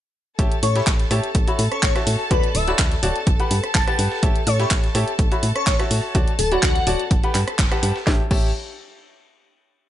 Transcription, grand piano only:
0.39 0.55 G4 medium
0.39 0.55 C#5 medium
0.39 0.55 E5 medium
0.39 0.55 A5 medium
0.76 1.00 G4 medium
0.76 1.00 C#5 medium
0.76 1.00 E5 medium
0.76 1.00 B5 medium
1.11 1.27 G4 medium
1.11 1.27 C#5 medium
1.11 1.27 E5 medium
1.11 1.27 A5 medium
1.48 1.62 F#4 medium
1.48 1.62 C#5 medium
1.48 1.62 E5 medium
1.48 1.62 B5 medium
1.96 2.28 F#4 medium
1.96 2.28 C#5 medium
1.96 2.28 E5 medium
1.96 2.28 A5 loud
2.31 2.47 F#4 medium
2.31 2.47 C#5 medium
2.31 2.47 D5 medium
2.31 2.47 A5 loud
2.68 2.92 F#4 medium
2.68 2.92 C#5 medium
2.68 2.92 D5 medium
2.68 2.92 B5 medium
3.03 3.19 F#4 medium
3.03 3.19 C#5 medium
3.03 3.19 D5 medium
3.03 3.19 A5 loud
3.40 3.54 G4 medium
3.40 3.54 B4 medium
3.40 3.54 F#5 medium
3.40 3.54 B5 medium
3.88 4.20 G4 medium
3.88 4.20 B4 medium
3.88 4.20 F#5 medium
3.88 4.20 A5 loud
4.23 4.39 G4 medium
4.23 4.39 C#5 medium
4.23 4.39 E5 medium
4.23 4.39 A5 loud
4.60 4.84 G4 medium
4.60 4.84 C#5 medium
4.60 4.84 E5 medium
4.60 4.84 B5 medium
4.95 5.11 G4 medium
4.95 5.11 C#5 medium
4.95 5.11 E5 medium
4.95 5.11 A5 medium
5.32 5.46 F#4 medium
5.32 5.46 C#5 medium
5.32 5.46 E5 medium
5.32 5.46 B5 medium
5.80 6.12 F#4 medium
5.80 6.12 C#5 medium
5.80 6.12 E5 medium
5.80 6.12 A5 loud
6.15 6.31 F#4 medium
6.15 6.31 C#5 medium
6.15 6.31 D5 medium
6.15 6.31 A5 loud
6.52 6.76 F#4 medium
6.52 6.76 C#5 medium
6.52 6.76 D5 medium
6.52 6.76 B5 medium
6.87 7.03 F#4 medium
6.87 7.03 C#5 medium
6.87 7.03 D5 medium
6.87 7.03 A5 loud
7.24 7.38 G4 medium
7.24 7.38 B4 medium
7.24 7.38 F#5 medium
7.24 7.38 B5 medium
7.72 7.96 G4 medium
7.72 7.96 B4 medium
7.72 7.96 F#5 medium
7.72 7.96 A5 medium
8.07 8.21 G4 medium
8.07 8.21 C#5 medium
8.07 8.21 E5 medium
8.07 8.21 A5 loud
8.31 8.49 G4 medium
8.31 8.49 C#5 medium
8.31 8.49 E5 medium
8.31 8.49 A5 loud

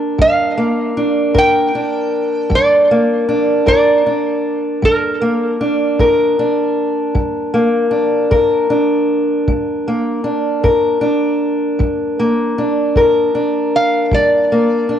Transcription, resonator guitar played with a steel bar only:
0.00 0.16 D5 medium
0.22 1.38 F5 medium
1.38 2.56 G5 loud
2.55 3.65 D5 medium
3.68 4.87 D5 medium
4.85 5.96 A#4 medium
13.76 14.14 F5 medium
14.15 14.99 D5 medium

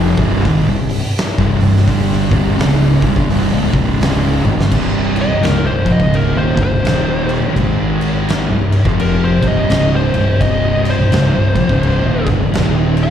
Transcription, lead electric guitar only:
5.21 5.43 D#5 medium
5.43 5.66 A#4 loud
5.67 5.90 C5 medium
5.92 6.14 D#5 medium
6.15 6.37 A#4 medium
6.38 6.61 C5 medium
6.63 7.31 C5 loud
9.00 9.22 A#4 loud
9.25 9.47 C5 medium
9.48 9.93 D#5 medium
9.96 10.41 C5 medium
10.41 10.87 D#5 medium
10.90 12.28 C5 medium
13.03 13.10 F5 loud

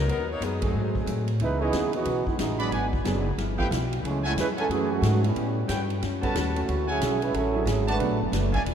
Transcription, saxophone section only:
0.10 0.29 F#3 medium
0.10 0.29 B3 medium
0.10 0.29 D#4 medium
0.10 0.29 A#4 medium
0.32 0.43 A#3 medium
0.32 0.43 D#4 medium
0.32 0.43 F#4 medium
0.32 0.43 C#5 medium
0.44 0.63 F#3 medium
0.44 0.64 B3 medium
0.44 0.63 D#4 medium
0.44 0.63 G#4 medium
0.66 1.26 F#3 medium
0.66 1.26 C4 medium
0.66 1.26 D#4 medium
0.66 1.26 G#4 medium

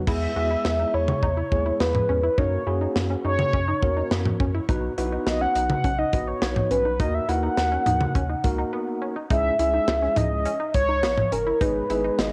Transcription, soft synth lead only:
0.08 0.96 E5 loud
0.94 1.82 C#5 loud
1.81 2.23 B4 medium
2.24 2.40 B4 medium
2.38 2.96 C#5 medium
3.25 4.07 C#5 loud
5.27 5.43 D#5 loud
5.41 5.69 F#5 loud
5.70 6.00 F#5 loud
5.99 6.29 D#5 loud
6.28 6.70 C#5 loud
6.71 7.01 B4 medium
7.00 7.16 D#5 loud
7.14 7.30 E5 loud
7.29 9.02 F#5 loud
9.31 9.57 E5 loud
9.59 10.19 E5 loud
10.17 10.74 D#5 loud
10.75 11.34 C#5 loud
11.32 11.63 A#4 medium
11.61 12.20 B4 loud
12.19 12.32 D#5 loud

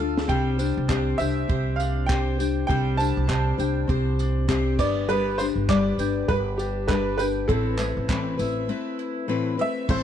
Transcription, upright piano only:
0.29 1.22 G5 loud
1.18 1.80 E5 loud
1.76 2.05 F5 medium
2.06 2.65 G5 medium
2.67 2.99 G5 loud
2.97 3.84 A5 loud
4.79 5.07 D5 loud
5.09 5.40 B4 loud
5.38 5.45 C5 loud
5.69 6.25 D5 loud
6.28 6.35 B4 loud
6.58 6.86 G4 medium
6.88 7.16 B4 medium
7.18 7.25 B4 loud
7.48 9.54 A4 medium
9.61 9.91 E5 loud
9.90 10.03 C5 loud

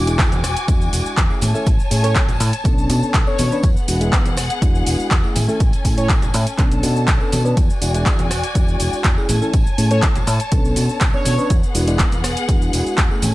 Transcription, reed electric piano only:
0.07 0.28 G#3 medium
0.07 0.28 D4 medium
0.07 0.28 E4 medium
0.07 0.28 G#4 medium
0.67 1.27 G#3 medium
0.67 1.27 D4 medium
0.67 1.27 E4 medium
0.67 1.28 F#4 loud
1.30 1.51 A3 medium
1.30 1.51 C#4 medium
1.30 1.51 E4 medium
1.30 1.51 G#4 medium
1.54 1.67 A3 medium
1.54 1.67 C#4 medium
1.54 1.68 E4 medium
1.54 1.68 A4 loud
1.91 2.02 A3 medium
1.91 2.02 C#4 medium
1.91 2.02 E4 medium
1.91 2.02 G#4 medium
2.03 2.25 A3 medium
2.03 2.25 C#4 medium
2.03 2.25 E4 medium
2.03 2.25 A4 medium
2.64 3.23 B3 medium
2.64 3.24 C#4 medium
2.64 3.24 D4 medium
2.64 3.24 A4 loud
3.27 3.48 B3 medium
3.27 3.48 C#4 medium
3.27 3.48 D4 medium
3.27 3.48 A4 medium
3.51 3.62 B3 medium
3.51 3.62 C#4 medium
3.51 3.62 D4 medium
3.51 3.62 B4 loud
3.88 3.99 G#3 medium
3.88 3.99 D4 medium
3.88 3.99 E4 medium
3.88 3.99 F#4 loud
4.00 4.21 G#3 medium
4.00 4.22 D4 medium
4.00 4.22 E4 medium
4.00 4.22 G#4 medium
4.61 5.21 G#3 medium
4.61 5.21 D4 medium
4.61 5.21 E4 medium
4.61 5.21 F#4 loud
5.23 5.44 A3 medium
5.23 5.45 C#4 medium
5.23 5.45 E4 medium
5.23 5.45 G#4 medium
5.48 5.61 A3 medium
5.48 5.61 C#4 medium
5.48 5.61 E4 medium
5.48 5.61 A4 loud
5.84 5.96 A3 medium
5.84 5.96 C#4 medium
5.84 5.96 E4 medium
5.84 5.96 G#4 medium
5.97 6.18 A3 medium
5.97 6.18 C#4 medium
5.97 6.18 E4 medium
5.97 6.19 A4 medium
6.58 7.17 B3 medium
6.58 7.17 C#4 medium
6.58 7.18 D4 medium
6.58 7.18 A4 loud
7.20 7.41 B3 medium
7.20 7.41 C#4 medium
7.20 7.41 D4 medium
7.20 7.42 A4 medium
7.45 7.55 B3 medium
7.45 7.55 C#4 medium
7.45 7.56 D4 medium
7.45 7.56 B4 medium
7.81 7.92 G#3 medium
7.81 7.92 D4 medium
7.81 7.93 E4 medium
7.81 7.93 F#4 medium
7.94 8.15 G#3 medium
7.94 8.15 D4 medium
7.94 8.15 E4 medium
7.94 8.15 G#4 medium
8.54 9.14 G#3 medium
8.54 9.14 D4 medium
8.54 9.14 E4 medium
8.54 9.15 F#4 loud
9.17 9.38 A3 medium
9.17 9.38 C#4 medium
9.17 9.38 E4 medium
9.17 9.38 G#4 medium
9.42 9.54 A3 medium
9.42 9.54 C#4 medium
9.42 9.55 E4 medium
9.42 9.55 A4 loud
9.78 9.89 A3 medium
9.78 9.89 C#4 medium
9.78 9.89 E4 medium
9.78 9.89 G#4 medium
9.91 10.12 A3 medium
9.91 10.12 C#4 medium
9.91 10.12 E4 medium
9.91 10.12 A4 medium
10.52 11.11 B3 medium
10.52 11.11 C#4 medium
10.52 11.11 D4 medium
10.52 11.12 A4 loud
11.14 11.35 B3 medium
11.14 11.35 C#4 medium
11.14 11.35 D4 medium
11.14 11.35 A4 medium
11.38 11.49 B3 medium
11.38 11.49 C#4 medium
11.38 11.49 D4 medium
11.38 11.49 B4 loud
11.75 11.86 G#3 medium
11.75 11.86 D4 medium
11.75 11.86 E4 medium
11.75 11.86 F#4 medium
11.87 12.08 G#3 medium
11.87 12.08 D4 medium
11.87 12.09 E4 medium
11.87 12.09 G#4 medium
12.48 13.07 G#3 medium
12.48 13.07 D4 medium
12.48 13.08 E4 medium
12.48 13.08 F#4 loud
13.10 13.31 A3 medium
13.10 13.31 C#4 medium
13.10 13.32 E4 medium
13.10 13.32 G#4 medium

